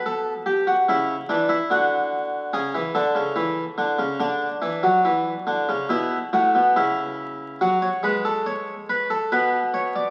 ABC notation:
X:1
M:3/4
L:1/16
Q:1/4=71
K:Amix
V:1 name="Harpsichord"
A2 G F E2 D E F4 | ^G2 A6 D4- | D4 E2 F2 E4 | [K:F#m] F c B A c2 B A B2 c d |]
V:2 name="Harpsichord" clef=bass
B,,4 C,2 E,2 D,4 | C, E, D, C, E,2 D, C, D,2 E, F, | E,2 D, C, B,,2 A,, B,, C,4 | [K:F#m] F,2 G,6 B,,4 |]